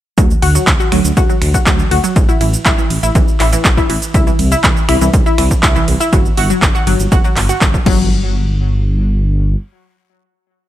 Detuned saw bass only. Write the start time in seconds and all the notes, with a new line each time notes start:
0.18 D2
0.42 D2
0.67 D2
0.92 D2
1.05 D2
1.17 D2
1.42 D2
1.67 D2
1.91 D2
2.16 A1
2.41 A1
2.66 A1
2.90 A1
3.03 A1
3.15 A1
3.40 A1
3.65 A1
3.89 A1
4.14 C2
4.39 C2
4.64 C2
4.89 C2
5.01 C2
5.13 C2
5.38 C2
5.63 C2
5.88 C2
6.13 G1
6.37 G1
6.62 G1
6.87 G1
7.00 G1
7.12 G1
7.37 G1
7.61 G1
7.86 G1